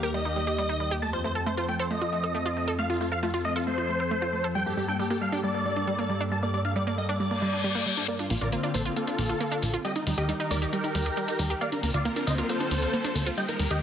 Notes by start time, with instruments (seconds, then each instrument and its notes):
Already playing: analog synth pad D#2 D#3 A#3 G4
0.03 synth arpeggio sound G4, supersaw synth A#4
0.14 synth arpeggio sound G3, supersaw synth D#5
0.25 synth arpeggio sound D#4
0.36 synth arpeggio sound G3
0.47 synth arpeggio sound G4
0.58 synth arpeggio sound G3
0.69 synth arpeggio sound D#4
0.80 synth arpeggio sound G3
0.91 synth arpeggio sound G4
1.02 analog synth pad F2 F3 C4 A4, synth arpeggio sound A3, supersaw synth A5
1.13 synth arpeggio sound F4, supersaw synth C5
1.24 synth arpeggio sound A3, supersaw synth C5
1.35 synth arpeggio sound A4, supersaw synth A5
1.46 synth arpeggio sound A3, supersaw synth C5
1.57 synth arpeggio sound F4, supersaw synth C5
1.68 synth arpeggio sound A3, supersaw synth G5
1.79 synth arpeggio sound A4, supersaw synth C5
1.90 synth arpeggio sound A3, supersaw synth D#5
2.02 synth arpeggio sound F4
2.13 synth arpeggio sound A3
2.24 synth arpeggio sound A4
2.35 synth arpeggio sound A3
2.46 synth arpeggio sound F4
2.57 synth arpeggio sound A3
2.68 synth arpeggio sound A4
2.79 synth arpeggio sound A3, supersaw synth F5
2.90 supersaw synth F4, synth arpeggio sound F4
3.01 synth arpeggio sound A3, supersaw synth F4
3.12 synth arpeggio sound A4, supersaw synth F5
3.23 synth arpeggio sound A3, supersaw synth F4
3.34 synth arpeggio sound F4, supersaw synth F4
3.45 synth arpeggio sound A3, supersaw synth D#5
3.56 supersaw synth F4, synth arpeggio sound A4
3.67 synth arpeggio sound A3, supersaw synth C5
3.78 synth arpeggio sound F4
3.89 synth arpeggio sound A3
4.00 synth arpeggio sound A4
4.11 synth arpeggio sound A3
4.22 synth arpeggio sound F4
4.33 synth arpeggio sound A3
4.44 synth arpeggio sound A4
4.55 analog synth pad G2 G3 A#3, synth arpeggio sound G3, supersaw synth G5
4.66 synth arpeggio sound A#3, supersaw synth G4
4.77 synth arpeggio sound G3, supersaw synth G4
4.88 synth arpeggio sound D4, supersaw synth G5
4.99 synth arpeggio sound G3, supersaw synth G4
5.10 synth arpeggio sound A#3, supersaw synth G4
5.21 synth arpeggio sound G3, supersaw synth F5
5.32 synth arpeggio sound D4, supersaw synth G4
5.43 synth arpeggio sound G3, supersaw synth D5
5.54 synth arpeggio sound A#3
5.65 synth arpeggio sound G3
5.76 synth arpeggio sound D4
5.87 synth arpeggio sound G3
5.98 synth arpeggio sound A#3
6.10 synth arpeggio sound G3
6.21 synth arpeggio sound D4
6.32 synth arpeggio sound G3, supersaw synth A5
6.43 synth arpeggio sound A#3, supersaw synth D5
6.54 synth arpeggio sound G3, supersaw synth D5
6.65 synth arpeggio sound D4, supersaw synth F5
6.76 synth arpeggio sound G3, supersaw synth D5
6.87 synth arpeggio sound A#3, supersaw synth D5
6.98 synth arpeggio sound G3, supersaw synth D#5
7.09 synth arpeggio sound D4, supersaw synth D5
7.20 synth arpeggio sound G3, supersaw synth D5, reverse cymbal
7.31 synth arpeggio sound A#3
7.42 synth arpeggio sound G3
7.53 synth arpeggio sound D4
7.64 synth arpeggio sound G3
7.75 synth arpeggio sound A#3
7.86 synth arpeggio sound G3
7.97 synth arpeggio sound D4
8.08 analog synth pad D3 A#3 C4, synth arpeggio sound A#3, supersaw synth A#4 D5, closed hi-hat, riser
8.19 synth arpeggio sound D4, supersaw synth F4, closed hi-hat
8.30 analog synth bass A#1, synth arpeggio sound A#3, supersaw synth F4, open hi-hat
8.41 analog synth bass A#1, synth arpeggio sound F4, supersaw synth A#4 D5, closed hi-hat
8.52 synth arpeggio sound A#3, supersaw synth F4, closed hi-hat
8.63 synth arpeggio sound D4, supersaw synth F4, closed hi-hat
8.74 analog synth bass A#1, synth arpeggio sound A#3, supersaw synth A4 C5, open hi-hat
8.85 supersaw synth F4, synth arpeggio sound F4, closed hi-hat
8.96 synth arpeggio sound A#3, supersaw synth F4 A4, closed hi-hat
9.07 synth arpeggio sound D4, closed hi-hat
9.18 analog synth bass A#1, synth arpeggio sound A#3, open hi-hat
9.29 synth arpeggio sound F4, closed hi-hat
9.40 synth arpeggio sound A#3, closed hi-hat
9.52 synth arpeggio sound D4, closed hi-hat
9.62 analog synth bass A#1, synth arpeggio sound A#3, open hi-hat
9.74 synth arpeggio sound F4, closed hi-hat
9.85 analog synth pad D#3 D#4 G4 A#4, synth arpeggio sound G3, supersaw synth G4 D#5, closed hi-hat
9.96 supersaw synth D#4, synth arpeggio sound D#4, closed hi-hat
10.07 analog synth bass D#2, synth arpeggio sound G3, supersaw synth D#4, open hi-hat
10.18 analog synth bass D#2, supersaw synth G4 D#5, synth arpeggio sound G4, closed hi-hat
10.29 synth arpeggio sound G3, supersaw synth D#4, closed hi-hat
10.40 supersaw synth D#4, synth arpeggio sound D#4, closed hi-hat
10.51 analog synth bass D#2, synth arpeggio sound G3, supersaw synth A#4 D5, open hi-hat
10.62 supersaw synth D#4, synth arpeggio sound G4, closed hi-hat
10.73 synth arpeggio sound G3, supersaw synth G4 A#4, closed hi-hat
10.84 synth arpeggio sound D#4, closed hi-hat
10.95 analog synth bass D#2, synth arpeggio sound G3, open hi-hat
11.06 synth arpeggio sound G4, closed hi-hat
11.17 synth arpeggio sound G3, closed hi-hat
11.28 synth arpeggio sound D#4, closed hi-hat
11.39 analog synth bass D#2, synth arpeggio sound G3, open hi-hat
11.50 synth arpeggio sound G4, closed hi-hat
11.61 analog synth pad D3 A#3 C4 F4, synth arpeggio sound A#3, supersaw synth D5 F5, closed hi-hat
11.72 synth arpeggio sound D4, supersaw synth A#4, closed hi-hat
11.83 analog synth bass D2, synth arpeggio sound A#3, supersaw synth A#4, open hi-hat
11.94 analog synth bass D2, synth arpeggio sound F4, supersaw synth D5 F5, closed hi-hat
12.05 synth arpeggio sound A#3, supersaw synth A#4, closed hi-hat
12.16 synth arpeggio sound D4, supersaw synth A#4, closed hi-hat
12.27 analog synth bass D2, synth arpeggio sound A#3, supersaw synth C5 D#5, open hi-hat
12.38 synth arpeggio sound F4, supersaw synth A#4, closed hi-hat
12.49 synth arpeggio sound A#3, supersaw synth A4 C5, closed hi-hat
12.60 synth arpeggio sound D4, closed hi-hat
12.71 analog synth bass D2, synth arpeggio sound A#3, open hi-hat
12.82 synth arpeggio sound F4, closed hi-hat
12.93 synth arpeggio sound A#3, closed hi-hat
13.04 synth arpeggio sound D4, closed hi-hat
13.15 analog synth bass D2, synth arpeggio sound A#3, open hi-hat
13.26 synth arpeggio sound F4, closed hi-hat
13.37 analog synth pad D#3 D#4 G4 A#4, synth arpeggio sound G3, supersaw synth D#5 G5, closed hi-hat
13.48 synth arpeggio sound D#4, supersaw synth A#4, closed hi-hat
13.59 analog synth bass D#2, synth arpeggio sound G3, supersaw synth A#4, open hi-hat
13.70 analog synth bass D#2, synth arpeggio sound G4, supersaw synth D#5 G5, closed hi-hat